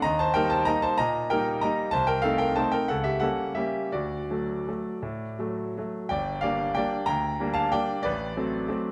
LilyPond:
<<
  \new Staff \with { instrumentName = "Grand piano" } { \time 3/4 \key g \minor \tempo 4 = 186 <ees'' bes''>8 <c'' a''>8 <bes' g''>8 <c'' a''>8 <ees'' bes''>8 <c'' a''>8 | <ees'' bes''>4 <bes' g''>4 <ees'' bes''>4 | <c'' a''>8 <bes' g''>8 <a' f''>8 <bes' g''>8 <c'' a''>8 <bes' g''>8 | <a' fis''>8 <g' e''>8 <a' fis''>4 <g' e''>4 |
<fis' d''>2.~ | <fis' d''>2 r4 | <d'' g''>4 <d'' f''>4 <d'' g''>4 | <g'' bes''>4. <f'' a''>8 <d'' g''>4 |
<b' d''>2. | }
  \new Staff \with { instrumentName = "Grand piano" } { \time 3/4 \key g \minor ees,4 <g bes ees'>4 <g bes ees'>4 | bes,4 <g bes ees'>4 <g bes ees'>4 | c,4 <a c' ees'>4 <a c' ees'>4 | cis,4 <g ais cis'>4 <g ais cis'>4 |
d,4 <fis a>4 <fis a>4 | a,4 <fis a>4 <fis a>4 | g,,4 <g bes d'>4 <g bes d'>4 | d,4 <g bes d'>4 <g bes d'>4 |
a,,4 <fis a c'>4 <fis a c'>4 | }
>>